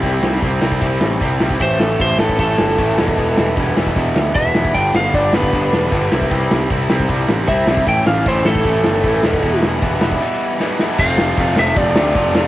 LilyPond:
<<
  \new Staff \with { instrumentName = "Lead electric guitar" } { \time 4/4 \key e \minor \tempo 4 = 153 g'4 r2. | c''8 a'8 c''8 a'8 a'2~ | a'4 r2 e''4 | g''8 f''8 d''8 b'2~ b'8~ |
b'8 r2 r8 e''4 | g''8 f''8 c''8 a'2~ a'8~ | a'8 r2. r8 | f''4. e''8 d''2 | }
  \new Staff \with { instrumentName = "Overdriven electric guitar" } { \time 4/4 \key e \minor <c g c' e'>4 <c g c' e'>8 <c g c' e'>8 <c g c' e'>4 <c g c' e'>8 <c g c' e'>8 | <a, e a cis' e'>4 <a, e a cis' e'>8 <a, e a cis' e'>8 <a, e a cis' e'>4 <a, e a cis' e'>8 <e g b e'>8 | <e g b e'>4 <e g b e'>8 <e g b e'>8 <e g b e'>4 <e g b e'>8 <e g b e'>8 | <g, d g b d'>4 <g, d g b d'>8 <g, d g b d'>8 <g, d g b d'>4 <g, d g b d'>8 <c g c' e'>8 |
<c g c' e'>4 <c g c' e'>8 <c g c' e'>8 <c g c' e'>4 <c g c' e'>8 <c g c' e'>8 | <a, e a cis' e'>4 <a, e a cis' e'>8 <a, e a cis' e'>8 <a, e a cis' e'>4 <a, e a cis' e'>8 <e g b e'>8 | <e g b e'>4 <e g b e'>8 <e g b e'>8 <e g b e'>4 <e g b e'>8 <e g b e'>8 | <f, c f a c' f'>8 <f, c f a c' f'>8 <f, c f a c' f'>8 <f, c f a c' f'>8 <f, c f a c' f'>8 <f, c f a c' f'>8 <f, c f a c' f'>8 <f, c f a c' f'>8 | }
  \new Staff \with { instrumentName = "Distorted electric guitar" } { \clef bass \time 4/4 \key e \minor <c g c'>4 <c g c'>8 <c g c'>8 <c g c'>4 <c g c'>8 <c g c'>8 | <a, e a>4 <a, e a>8 <a, e a>8 <a, e a>4 <a, e a>8 <e, b, e>8 | <e, b, e>4 <e, b, e>8 <e, b, e>8 <e, b, e>4 <e, b, e>8 <e, b, e>8 | <g, d g>4 <g, d g>8 <g, d g>8 <g, d g>4 <g, d g>8 <c g c'>8 |
<c g c'>4 <c g c'>8 <c g c'>8 <c g c'>4 <c g c'>8 <c g c'>8 | <a, e a>4 <a, e a>8 <a, e a>8 <a, e a>4 <a, e a>8 <e, b, e>8 | <e, b, e>4 <e, b, e>8 <e, b, e>8 <e, b, e>4 <e, b, e>8 <e, b, e>8 | <f, c f>8 <f, c f>8 <f, c f>8 <f, c f>8 <f, c f>8 <f, c f>8 <f, c f>8 <f, c f>8 | }
  \new Staff \with { instrumentName = "Picked electric bass" } { \clef bass \time 4/4 \key e \minor c,8 c,8 c,8 c,8 c,8 a,,8 c,8 c,8 | a,,8 a,,8 a,,8 a,,8 a,,8 g,,8 a,,8 e,,8 | e,,8 e,,8 e,,8 e,,8 e,,8 d,8 e,,8 e,,8 | g,,8 g,,8 g,,8 g,,8 g,,8 e,,8 g,,8 c,8 |
c,8 c,8 c,8 c,8 c,8 a,,8 c,8 c,8 | a,,8 a,,8 a,,8 a,,8 a,,8 g,,8 a,,8 e,,8 | e,,8 e,,8 e,,8 e,,8 r2 | f,,4 f,,8 f,,8 f,,8 d,8 f,,8 f,,8 | }
  \new DrumStaff \with { instrumentName = "Drums" } \drummode { \time 4/4 <hho bd>8 sn8 <hho bd>8 sn16 bd16 <hho bd>8 sn8 <hho bd>8 sn16 bd16 | <hho bd>8 sn8 <hho bd>8 sn16 bd16 <hho bd>8 sn8 <hho bd>8 sn16 bd16 | <hho bd>8 sn8 <hho bd>8 sn16 bd16 <hho bd>8 sn8 <hho bd>8 sn16 bd16 | <hho bd>8 sn8 <hho bd>8 sn16 bd16 <hho bd>8 sn8 <hho bd>8 sn16 bd16 |
<hho bd>8 sn8 <hho bd>8 sn16 bd16 <hho bd>8 sn8 <hho bd>8 sn16 bd16 | <hho bd>8 sn8 <hho bd>8 sn16 bd16 <hho bd>8 sn8 <hho bd>8 sn16 bd16 | <hho bd>8 sn8 <hho bd>8 sn16 bd16 r4 sn8 sn8 | <cymc bd>8 sn8 <bd cymr>8 sn8 <bd cymr>8 sn8 <bd cymr>8 sn8 | }
>>